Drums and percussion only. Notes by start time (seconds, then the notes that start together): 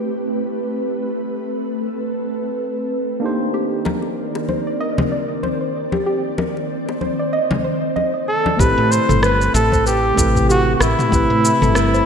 3.85 high bongo, high conga
4.02 high bongo
4.35 high bongo
4.49 high conga
4.98 high conga, low conga
5.43 high conga
5.92 high conga
6.38 high bongo, high conga
6.57 high bongo
6.89 high bongo
7.01 high conga
7.51 high conga, low conga
7.96 high conga
8.46 high conga
8.59 kick, shaker
8.92 shaker
9.09 mid tom, shaker
9.23 cross-stick, shaker
9.42 shaker
9.55 shaker
9.72 kick, shaker
9.87 shaker
10.17 kick, shaker
10.35 kick, shaker
10.50 shaker
10.81 cross-stick, shaker
10.99 mid tom, shaker
11.12 kick, shaker
11.45 shaker
11.62 mid tom, shaker
11.75 cross-stick, shaker
11.94 shaker